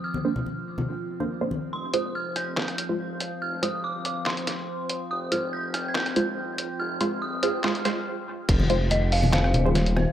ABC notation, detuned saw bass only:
X:1
M:4/4
L:1/16
Q:1/4=142
K:Fdor
V:1 name="Detuned saw bass" clef=bass
z16 | F,,,8- F,,,2 E,,,4- E,,, z | F,,,4- F,,, G,,,3 F,,,4 z4 | F,,,8- F,,,2 E,,,4- E,,, z |
F,,,4- F,,, G,,,3 F,,,4 z4 | F,,,8- F,,,2 E,,,4- E,,, z |]